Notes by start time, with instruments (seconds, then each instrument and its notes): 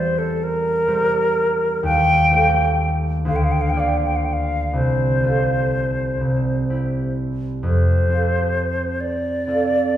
Already playing: harp E2 G3 G4 C5, flute C5
0.19 flute A4
0.44 flute A#4
0.88 harp G3 G4 C5
1.83 harp D#2, flute G5
2.31 harp A3 F4 C5
3.25 harp D2, flute F5
3.36 flute G5
3.44 flute F5
3.52 flute G5
3.61 flute F5
3.70 harp A#3, flute G5
3.74 harp F4 D5
3.80 flute F5
3.88 flute G5
3.97 flute F5
4.07 flute G5
4.16 flute F5
4.25 flute G5
4.33 flute F5
4.73 harp C2, flute C5
5.23 harp C4 F4 A4
6.21 harp C2
6.69 harp C4 E4 G4
7.63 harp F2, flute C5
8.09 harp C4 F4 A4
9.01 flute D5
9.47 harp C4 F4 A4